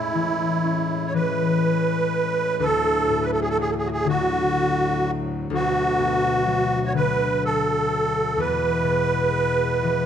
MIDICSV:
0, 0, Header, 1, 4, 480
1, 0, Start_track
1, 0, Key_signature, 3, "major"
1, 0, Tempo, 978793
1, 1275, Time_signature, 6, 3, 24, 8
1, 2225, Tempo, 955414
1, 4145, Tempo, 995025
1, 4965, End_track
2, 0, Start_track
2, 0, Title_t, "Accordion"
2, 0, Program_c, 0, 21
2, 0, Note_on_c, 0, 64, 74
2, 522, Note_on_c, 0, 73, 62
2, 546, Note_off_c, 0, 64, 0
2, 556, Note_off_c, 0, 73, 0
2, 563, Note_on_c, 0, 71, 87
2, 1290, Note_on_c, 0, 69, 92
2, 1299, Note_off_c, 0, 71, 0
2, 1581, Note_on_c, 0, 71, 75
2, 1594, Note_off_c, 0, 69, 0
2, 1623, Note_off_c, 0, 71, 0
2, 1629, Note_on_c, 0, 69, 75
2, 1668, Note_off_c, 0, 69, 0
2, 1673, Note_on_c, 0, 68, 79
2, 1712, Note_off_c, 0, 68, 0
2, 1713, Note_on_c, 0, 69, 86
2, 1754, Note_off_c, 0, 69, 0
2, 1767, Note_on_c, 0, 68, 89
2, 1820, Note_off_c, 0, 68, 0
2, 1820, Note_on_c, 0, 69, 56
2, 1835, Note_off_c, 0, 69, 0
2, 1852, Note_on_c, 0, 68, 85
2, 1893, Note_on_c, 0, 66, 62
2, 1902, Note_off_c, 0, 68, 0
2, 1911, Note_off_c, 0, 66, 0
2, 1925, Note_on_c, 0, 68, 91
2, 1999, Note_off_c, 0, 68, 0
2, 2004, Note_on_c, 0, 66, 88
2, 2514, Note_off_c, 0, 66, 0
2, 2729, Note_on_c, 0, 66, 90
2, 3394, Note_on_c, 0, 73, 68
2, 3425, Note_off_c, 0, 66, 0
2, 3427, Note_off_c, 0, 73, 0
2, 3440, Note_on_c, 0, 71, 91
2, 3682, Note_off_c, 0, 71, 0
2, 3686, Note_on_c, 0, 69, 88
2, 4162, Note_on_c, 0, 71, 86
2, 4169, Note_off_c, 0, 69, 0
2, 4965, Note_off_c, 0, 71, 0
2, 4965, End_track
3, 0, Start_track
3, 0, Title_t, "Harp"
3, 0, Program_c, 1, 46
3, 0, Note_on_c, 1, 45, 51
3, 69, Note_on_c, 1, 52, 43
3, 315, Note_on_c, 1, 61, 48
3, 552, Note_off_c, 1, 52, 0
3, 558, Note_on_c, 1, 52, 52
3, 1272, Note_on_c, 1, 38, 58
3, 1299, Note_off_c, 1, 45, 0
3, 1299, Note_off_c, 1, 52, 0
3, 1302, Note_off_c, 1, 61, 0
3, 1507, Note_on_c, 1, 45, 52
3, 1751, Note_on_c, 1, 54, 54
3, 1984, Note_on_c, 1, 50, 58
3, 2013, Note_off_c, 1, 45, 0
3, 2013, Note_off_c, 1, 54, 0
3, 2703, Note_off_c, 1, 38, 0
3, 2709, Note_on_c, 1, 38, 65
3, 2731, Note_off_c, 1, 50, 0
3, 2954, Note_on_c, 1, 47, 56
3, 3194, Note_on_c, 1, 54, 57
3, 3431, Note_on_c, 1, 50, 53
3, 3452, Note_off_c, 1, 47, 0
3, 3452, Note_off_c, 1, 54, 0
3, 4149, Note_on_c, 1, 40, 56
3, 4171, Note_off_c, 1, 38, 0
3, 4171, Note_off_c, 1, 50, 0
3, 4373, Note_on_c, 1, 47, 50
3, 4608, Note_on_c, 1, 56, 45
3, 4853, Note_on_c, 1, 52, 47
3, 4965, Note_off_c, 1, 40, 0
3, 4965, Note_off_c, 1, 47, 0
3, 4965, Note_off_c, 1, 52, 0
3, 4965, Note_off_c, 1, 56, 0
3, 4965, End_track
4, 0, Start_track
4, 0, Title_t, "Harmonium"
4, 0, Program_c, 2, 20
4, 0, Note_on_c, 2, 45, 61
4, 0, Note_on_c, 2, 56, 53
4, 0, Note_on_c, 2, 61, 66
4, 1262, Note_off_c, 2, 61, 0
4, 1265, Note_off_c, 2, 56, 0
4, 1281, Note_on_c, 2, 54, 75
4, 1288, Note_on_c, 2, 38, 72
4, 2689, Note_off_c, 2, 45, 0
4, 2711, Note_on_c, 2, 47, 65
4, 4130, Note_off_c, 2, 54, 0
4, 4133, Note_off_c, 2, 38, 0
4, 4135, Note_off_c, 2, 47, 0
4, 4146, Note_on_c, 2, 47, 56
4, 4147, Note_on_c, 2, 40, 60
4, 4149, Note_on_c, 2, 56, 72
4, 4965, Note_off_c, 2, 40, 0
4, 4965, Note_off_c, 2, 47, 0
4, 4965, Note_off_c, 2, 56, 0
4, 4965, End_track
0, 0, End_of_file